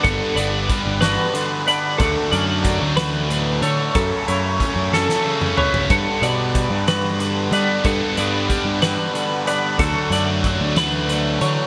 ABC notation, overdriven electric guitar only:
X:1
M:6/8
L:1/8
Q:3/8=62
K:Glyd
V:1 name="Overdriven electric guitar"
[G,,D,G,B,D] [G,B,D]2 [G,,D,G,B,D] [D,G,B,D] [G,B,D] | [D,F,A,D] [F,A,D]2 [D,F,A,D] [D,F,A,D] [F,A,D] | [F,,C,F,A,C] [F,A,C]2 [F,,C,F,A,C] [C,F,A,C] [F,A,C] | [G,,D,G,B,D] [G,B,D]2 [G,,D,G,B,D] [D,G,B,D] [G,B,D] |
[G,,D,G,B,D] [G,B,D]2 [G,,D,G,B,D] [D,G,B,D] [G,B,D] | [D,F,A,D] [F,A,D]2 [D,F,A,D] [D,F,A,D] [F,A,D] |]